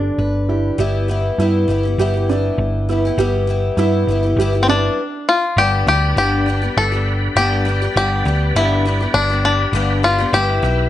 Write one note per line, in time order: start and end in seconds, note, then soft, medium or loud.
0.00 0.79 D3 medium
0.00 3.19 G3 medium
0.00 0.48 D4 medium
0.00 0.76 D4 medium
0.00 0.48 G4 medium
0.00 0.17 B4 medium
0.18 0.70 G1 medium
0.18 0.76 B4 medium
0.49 0.79 E4 medium
0.49 0.76 G4 medium
0.78 1.30 G1 medium
0.78 1.07 G3 medium
0.78 1.08 B3 medium
0.78 1.09 E4 medium
0.78 1.38 G4 medium
0.78 1.10 G4 medium
1.08 1.38 G3 medium
1.08 1.39 B3 medium
1.08 1.40 E4 medium
1.08 1.41 G4 medium
1.38 1.64 G2 medium
1.38 1.66 G3 medium
1.38 1.68 B3 medium
1.38 1.98 E4 medium
1.38 1.69 E4 medium
1.38 1.70 G4 medium
1.68 1.94 G1 medium
1.68 1.84 G3 medium
1.68 1.85 B3 medium
1.68 1.84 E4 medium
1.68 1.82 G4 medium
1.83 1.99 B3 soft
1.83 2.00 E4 soft
1.83 1.99 G4 soft
1.98 2.49 G1 loud
1.98 2.15 G3 medium
1.98 2.15 B3 medium
1.98 2.14 E4 medium
1.98 2.29 G4 loud
1.98 2.13 G4 loud
2.14 2.29 B3 soft
2.14 2.30 E4 soft
2.14 2.29 G4 medium
2.29 2.87 G3 medium
2.29 2.89 B3 medium
2.29 2.88 D4 medium
2.29 2.90 E4 medium
2.29 2.91 G4 medium
2.58 3.09 G1 loud
2.89 3.04 G3 medium
2.89 3.05 B3 medium
2.89 3.19 E4 medium
2.89 3.05 E4 medium
2.89 3.04 G4 medium
3.05 3.19 B3 medium
3.05 3.19 E4 medium
3.05 3.19 G4 medium
3.18 3.69 G1 loud
3.18 3.46 G3 medium
3.18 3.48 B3 medium
3.18 3.49 E4 medium
3.18 3.78 G4 medium
3.18 3.49 G4 medium
3.47 3.76 G3 medium
3.47 3.77 B3 medium
3.47 3.78 E4 medium
3.47 3.78 G4 medium
3.77 4.03 G2 medium
3.77 4.07 G3 medium
3.77 4.09 B3 medium
3.77 4.38 E4 medium
3.77 4.09 E4 medium
3.77 4.09 G4 medium
4.07 4.33 G1 medium
4.07 4.24 G3 medium
4.07 4.25 B3 medium
4.07 4.23 E4 medium
4.12 4.22 G4 medium
4.23 4.39 B3 soft
4.23 4.39 E4 medium
4.23 4.39 G4 medium
4.36 4.88 G1 loud
4.36 4.54 G3 medium
4.36 4.68 G4 medium
4.41 4.55 B3 loud
4.41 4.54 E4 loud
4.41 4.52 G4 loud
4.53 4.68 B3 soft
4.53 4.70 E4 medium
4.53 4.69 G4 medium
4.63 4.69 C4 medium
4.68 4.99 G3 medium
4.68 4.99 B3 medium
4.68 5.27 D4 medium
4.68 5.31 D4 medium
4.68 5.00 E4 medium
4.68 5.00 G4 medium
5.29 5.60 F4 medium
5.57 5.83 G1 loud
5.57 5.88 G2 medium
5.57 5.88 D3 medium
5.57 5.86 G3 medium
5.57 5.87 B3 medium
5.57 5.89 D4 medium
5.57 5.87 G4 medium
5.57 10.89 G4 medium
5.57 5.89 G4 medium
5.57 10.89 B4 medium
5.57 10.31 D5 medium
5.57 10.89 B5 medium
5.87 6.13 D2 loud
5.87 6.17 G3 medium
5.87 6.17 B3 medium
5.87 6.18 D4 medium
5.87 6.16 G4 medium
5.87 6.19 G4 medium
6.16 6.67 G1 loud
6.16 6.47 G2 medium
6.16 6.48 D3 medium
6.16 6.45 G3 medium
6.16 6.46 B3 medium
6.16 6.48 D4 medium
6.16 6.77 G4 medium
6.16 6.49 G4 medium
6.46 6.62 G3 medium
6.46 6.63 B3 medium
6.46 6.62 D4 medium
6.46 6.60 G4 medium
6.62 6.94 G3 soft
6.62 6.93 B3 soft
6.62 6.92 D4 soft
6.62 6.91 G4 medium
6.77 7.28 G1 loud
6.77 7.33 A4 medium
6.92 7.36 G3 soft
6.92 7.36 B3 soft
6.92 7.37 D4 medium
6.92 7.37 G4 medium
7.36 7.87 G1 loud
7.36 7.67 G2 medium
7.36 7.67 D3 medium
7.36 7.64 G3 medium
7.36 7.65 B3 medium
7.36 7.67 D4 medium
7.36 7.96 G4 loud
7.36 7.68 G4 loud
7.65 7.81 G3 medium
7.65 7.82 B3 medium
7.65 7.81 D4 medium
7.65 7.81 G4 medium
7.82 7.96 G3 soft
7.82 7.97 B3 medium
7.82 7.97 D4 medium
7.82 7.97 G4 medium
7.96 8.21 G1 loud
7.96 8.26 G2 medium
7.96 8.27 D3 medium
7.96 8.24 G3 medium
7.96 8.25 B3 medium
7.96 8.27 D4 medium
7.96 8.58 G4 medium
7.96 8.27 G4 medium
8.25 8.51 D2 loud
8.25 8.55 G3 medium
8.25 8.56 B3 medium
8.25 8.56 D4 medium
8.25 8.57 G4 medium
8.55 9.06 G1 loud
8.55 8.86 G2 medium
8.55 8.86 D3 medium
8.55 8.84 G3 medium
8.55 8.85 B3 medium
8.55 8.86 D4 medium
8.55 9.18 E4 loud
8.55 8.87 G4 medium
8.85 9.01 G3 medium
8.85 9.01 B3 medium
8.85 9.01 D4 medium
8.85 8.99 G4 medium
9.01 9.32 G3 soft
9.01 9.32 B3 soft
9.01 9.30 D4 soft
9.01 9.29 G4 medium
9.14 9.65 G1 loud
9.14 9.44 D4 loud
9.30 9.73 G3 soft
9.30 9.74 B3 soft
9.30 9.74 D4 soft
9.30 9.75 G4 medium
9.45 10.06 D4 medium
9.73 10.24 G1 loud
9.73 10.04 G2 medium
9.73 10.04 D3 medium
9.73 10.02 G3 medium
9.73 10.03 B3 medium
9.73 10.05 D4 loud
9.73 10.05 G4 loud
10.03 10.19 G3 medium
10.03 10.19 B3 medium
10.03 10.19 D4 medium
10.03 10.35 F4 loud
10.03 10.17 G4 medium
10.18 10.32 G3 medium
10.18 10.33 B3 medium
10.18 10.35 D4 medium
10.18 10.34 G4 medium
10.33 10.59 G1 loud
10.33 10.61 G3 medium
10.33 10.63 B3 medium
10.33 10.64 E4 loud
10.33 10.89 G4 loud
10.33 10.65 G4 loud
10.33 10.89 E5 medium
10.62 10.88 B1 loud
10.62 10.89 G3 medium
10.62 10.89 B3 medium
10.62 10.89 E4 medium
10.62 10.89 G4 medium